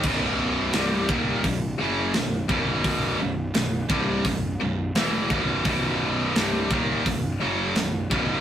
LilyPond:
<<
  \new Staff \with { instrumentName = "Distorted electric guitar" } { \clef bass \time 4/4 \tempo 4 = 85 <b,, fis, b,>4 <c, g, c>8 <dis, ais, dis>8 <b,, fis,>8 <fis, cis fis>8 <b,, fis,>8 <b,, fis, b,>8~ | <b,, fis, b,>8 <b,, fis,>8 <b,, fis,>8 <c, g, c>8 <b,, fis,>8 <b,, fis,>8 <e, b, e>8 <b,, fis, b,>8 | <b,, fis, b,>4 <c, g, c>8 <dis, ais, dis>8 <b,, fis,>8 <fis, cis fis>8 <b,, fis,>8 <b,, fis, b,>8 | }
  \new Staff \with { instrumentName = "Distorted electric guitar" } { \clef bass \time 4/4 <b,, fis, b,>4 <c, g, c>8 <dis, ais, dis>8 <b,, fis,>8 <fis, cis fis>8 <b,, fis,>8 <b,, fis, b,>8~ | <b,, fis, b,>8 <b,, fis,>8 <b,, fis,>8 <c, g, c>8 <b,, fis,>8 <b,, fis,>8 <e, b, e>8 <b,, fis, b,>8 | <b,, fis, b,>4 <c, g, c>8 <dis, ais, dis>8 <b,, fis,>8 <fis, cis fis>8 <b,, fis,>8 <b,, fis, b,>8 | }
  \new Staff \with { instrumentName = "Picked electric bass" } { \clef bass \time 4/4 b,,,4 c,,8 dis,,8 b,,,8 fis,,8 b,,,8 b,,,8~ | b,,,8 b,,,8 b,,,8 c,,8 b,,,8 b,,,8 e,,8 b,,,8 | b,,,4 c,,8 dis,,8 b,,,8 fis,,8 b,,,8 b,,,8 | }
  \new DrumStaff \with { instrumentName = "Drums" } \drummode { \time 4/4 <cymc bd>4 <hho sn>8 bd8 <hho bd>4 <hho sn>8 bd8 | <hho bd>4 <hho sn>8 bd8 <hho bd>4 <hho sn>8 bd8 | <hho bd>4 <hho sn>8 bd8 <hho bd>4 <hho sn>8 bd8 | }
>>